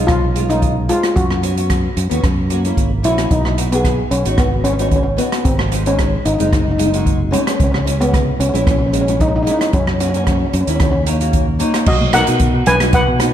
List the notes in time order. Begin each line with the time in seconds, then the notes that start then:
Already playing: B1 G#3 C#4 F4
0.07 F4, kick, cross-stick, closed hi-hat
0.36 G#3 C#4 F4, closed hi-hat
0.49 G#3 C#4 D#4 F4, closed hi-hat
0.62 kick, closed hi-hat
0.89 G#3 C#4 F4, closed hi-hat
1.03 cross-stick, closed hi-hat
1.16 F#2 F#4, kick, closed hi-hat
1.31 cross-stick
1.42 B3 C#4 F#4, closed hi-hat
1.56 B3 C#4 F#4, closed hi-hat
1.70 kick, cross-stick, closed hi-hat
1.97 F#2, closed hi-hat
2.09 D#2 B3 C#4 F#4, closed hi-hat
2.24 F#2, kick, cross-stick, closed hi-hat
2.50 A#3 C#4 F#4, closed hi-hat
2.64 A#3 C#4 E4, closed hi-hat
2.77 G#1, kick, closed hi-hat
3.03 A#1 A#3 C#4 E4 F#4, closed hi-hat
3.18 cross-stick, closed hi-hat
3.31 B1 D#4, kick, closed hi-hat
3.45 cross-stick
3.57 B3 D#4 F#4, closed hi-hat
3.71 B3 D#4 G#4, closed hi-hat
3.84 kick, cross-stick, closed hi-hat
4.11 B1 C#4, closed hi-hat
4.25 G#1 B3 D#4 F#4, closed hi-hat
4.37 B3, kick, cross-stick, closed hi-hat
4.64 B3 C#4 D#4 F#4, closed hi-hat
4.73 C#4
4.78 B3 C#4 D#4 F#4, closed hi-hat
4.89 C#4, kick, closed hi-hat
4.96 C#4
5.03 C#4
5.17 B3 D#4 F#4, closed hi-hat
5.32 cross-stick, closed hi-hat
5.45 G#1 C4, kick, closed hi-hat
5.59 cross-stick
5.71 G#3 C4 D#4, closed hi-hat
5.85 G#3 C#4 D#4 C5, closed hi-hat
5.99 kick, cross-stick, closed hi-hat
6.25 G#1 D#4, closed hi-hat
6.33 D#4
6.38 F#1 G#3 C4 D#4, closed hi-hat
6.48 D#4
6.53 D#4, kick, cross-stick, closed hi-hat
6.64 D#4
6.71 D#4
6.78 G#3 C4 D#4, closed hi-hat
6.86 D#4
6.92 G#3 C4 D#4 F#4, closed hi-hat
7.06 kick, closed hi-hat
7.31 G#3 C4 C#4 D#4, closed hi-hat
7.42 C#4
7.47 C#4, cross-stick, closed hi-hat
7.55 C#4
7.60 C#2 C#4, kick, closed hi-hat
7.72 C#4, cross-stick
7.79 C#4
7.84 G#3 C#4 E4, closed hi-hat
7.99 G#3 B3 C#4 E4, closed hi-hat
8.13 kick, cross-stick, closed hi-hat
8.39 C#2 C#4, closed hi-hat
8.49 G#3 C#4
8.54 A#1 C#4 E4, closed hi-hat
8.64 C#4, kick, cross-stick, closed hi-hat
8.71 C#4
8.79 C#4
8.87 C#4
8.92 G#3 C#4 F#4, closed hi-hat
9.01 C#4
9.06 G#3 C#4 E4, closed hi-hat
9.20 D#4, kick, closed hi-hat
9.28 D#4
9.36 D#4
9.43 G#3 C#4 D#4
9.47 E4, closed hi-hat
9.51 D#4
9.59 D#4, cross-stick, closed hi-hat
9.73 F#2 C#4, kick, closed hi-hat
9.87 cross-stick
9.99 A#3 C#4 F#4, closed hi-hat
10.09 C#4
10.13 A#3 C#4 F#4, closed hi-hat
10.24 C#4, kick, cross-stick, closed hi-hat
10.32 C#4
10.38 C#4
10.46 C#4
10.53 F#2 C#4, closed hi-hat
10.61 C#4
10.67 D#2 A#3 C#4 E4, closed hi-hat
10.76 C#4
10.80 C#4, kick, cross-stick, closed hi-hat
10.91 C#4
11.06 A#3 C#4 D#4, closed hi-hat
11.20 A#3 C#4 F#4, closed hi-hat
11.33 kick, closed hi-hat
11.59 A#3 C#4 D#4, closed hi-hat
11.74 cross-stick, closed hi-hat
11.86 B1 F#4 D#5, kick, crash
12.01 high conga
12.13 B3 D#4 F#4 A#4 F#5, cross-stick, closed hi-hat
12.27 B2 B3 D#4 F#4, closed hi-hat
12.39 kick, closed hi-hat
12.66 B1 B3 D#4 F#4 B4 G#5, closed hi-hat, low conga
12.80 B3 D#4 F#4, cross-stick, closed hi-hat
12.93 B4 F#5, kick, closed hi-hat
13.07 B2
13.19 B3 D#4 F#4, cross-stick, closed hi-hat, high conga